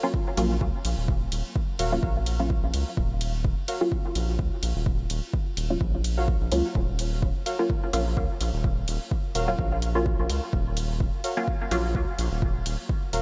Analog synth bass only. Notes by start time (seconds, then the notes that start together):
0.37 A#1
0.61 C#2
0.85 A#1
0.98 D#1
1.32 D#1
1.79 D#1
2.03 A#1
2.63 A#1
2.74 C#2
2.97 D#1
4.15 A#1
4.39 C#2
4.63 A#1
4.76 D#1
5.10 D#1
5.57 D#1
5.81 A#1
6.41 A#1
6.52 C#2
6.75 D#1
7.93 A#1
8.17 C#2
8.41 A#1
8.54 D#1
8.88 D#1
9.35 D#1
9.59 A#1
10.19 A#1
10.29 C#2
10.53 D#1
11.71 A#1
11.95 C#2
12.18 A#1
12.31 D#1
12.66 D#1
13.13 D#1